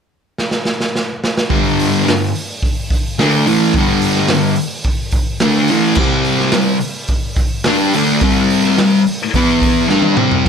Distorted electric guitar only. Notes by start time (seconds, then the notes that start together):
1.50 G2 D3 G3
2.05 G2 D3
3.19 D3 A3 D4
3.47 A2 E3 A3
3.77 G2 D3 G3
4.32 G2 D3
5.42 D3 A3 D4
5.71 A2 E3 A3
5.99 C3 G3 C4
6.54 C3 G3
7.66 G3 D4 G4
7.95 D3 A3 D4
8.22 C3 G3 C4
8.78 C3 G3
9.35 E3 B3 E4
9.89 G3 D4 G4
10.17 C3 G3 C4
10.46 G2